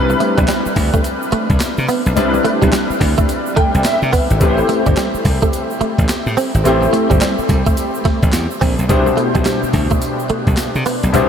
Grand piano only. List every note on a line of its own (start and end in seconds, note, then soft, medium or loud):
0.00 2.12 G3 medium
0.00 2.12 C4 medium
0.00 2.13 D4 medium
0.00 2.16 E4 medium
0.00 2.13 B4 medium
2.15 4.36 G3 medium
2.15 4.37 C4 medium
2.15 4.37 D4 medium
2.15 4.37 E4 medium
2.15 4.37 B4 medium
3.57 3.83 G5 medium
3.85 4.37 E5 medium
4.40 6.61 A3 medium
4.40 6.61 C4 medium
4.40 6.61 E4 medium
4.40 6.61 G4 medium
4.40 4.50 B4 medium
4.49 6.65 C5 medium
6.64 8.85 A3 medium
6.64 8.85 C4 medium
6.64 8.85 E4 medium
6.64 8.86 G4 medium
6.64 8.86 C5 medium
8.89 11.09 B2 medium
8.89 11.10 D4 medium
8.89 11.10 E4 medium
8.89 11.10 G4 medium
8.89 11.10 C5 medium
11.12 11.29 B2 medium
11.12 11.29 D4 medium
11.12 11.29 E4 medium
11.12 11.29 G4 medium
11.12 11.29 C5 medium